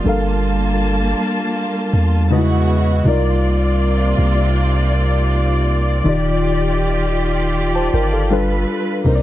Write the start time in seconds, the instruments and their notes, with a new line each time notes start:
Already playing: string section F4
0.04 808-style bass G1, synth keys G3 D4 A4 A#4, string section G3 A#3 A5
0.09 synth keys F5
1.93 808-style bass E2
2.30 synth keys C#3 G#3 D#4 F#4 B4 D#5, string section C#3 B3 E4 F#4
2.38 synth keys E4
3.04 808-style bass C2, synth keys C3 G3 D#4 F4 A#4, string section C3 A#3 F4 D5
3.09 synth keys D5
4.18 808-style bass C2
6.04 808-style bass D#1, synth keys D#3 D#4 F4 G4, string section D#3 F4 G4
6.09 synth keys D5
7.75 synth keys C5 A5
7.93 808-style bass G1, synth keys A#4 G5
8.13 synth keys A4 F5
8.30 synth keys G3 D4 F4 A4 B4, string section G3 A4 B4
9.04 808-style bass C2, synth keys C3 C4 D#4 A#4, string section C3 G3 A#3 D#4
9.09 synth keys C5
9.15 synth keys D5